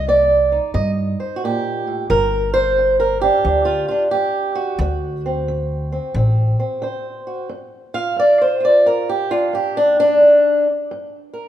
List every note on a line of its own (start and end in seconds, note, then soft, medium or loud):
0.00 0.58 C2 medium
0.08 0.71 C3 medium
0.08 0.74 D5 loud
0.52 2.08 D#4 soft
0.74 1.13 G2 medium
0.74 1.37 C3 medium
0.74 0.90 D#5 medium
1.20 1.43 C5 soft
1.36 1.42 F#4 medium
1.44 1.87 A#2 medium
1.44 2.10 G4 medium
1.87 2.11 A2 medium
2.10 3.28 G1 medium
2.10 2.73 G2 medium
2.10 2.53 A#4 loud
2.54 2.99 C5 loud
2.79 3.41 G2 medium
3.00 3.21 A#4 medium
3.21 3.47 D4 soft
3.21 4.10 G4 medium
3.45 3.83 D2 medium
3.45 4.09 G2 medium
3.45 3.91 D4 soft
3.65 3.87 F4 medium
3.88 5.25 D4 soft
3.88 4.02 F4 medium
4.11 4.76 G2 medium
4.11 4.79 G4 medium
4.55 7.26 F#4 medium
4.79 5.97 D2 medium
4.79 5.43 D3 medium
5.26 5.91 C4 soft
5.48 6.10 D3 medium
5.92 6.16 C4 soft
6.14 6.53 A1 medium
6.14 6.78 D3 medium
6.14 6.58 C4 soft
6.59 7.47 C4 soft
6.82 7.45 D3 medium
6.82 7.47 C5 soft
7.27 7.47 F#4 soft
7.49 8.12 G2 medium
7.94 8.60 F4 soft
7.94 8.17 F5 loud
8.16 8.80 G2 medium
8.16 8.41 D5 medium
8.41 8.63 C5 medium
8.60 9.30 F4 soft
8.65 8.86 D5 medium
8.86 9.48 G2 medium
8.86 9.08 A#4 medium
9.09 9.31 G4 medium
9.31 9.77 D4 soft
9.31 9.53 F4 medium
9.53 10.15 G2 medium
9.53 9.76 G4 medium
9.77 9.98 D4 medium
10.00 10.66 D4 loud
10.21 10.83 G2 medium
10.91 11.48 G2 medium
11.33 11.48 A#4 soft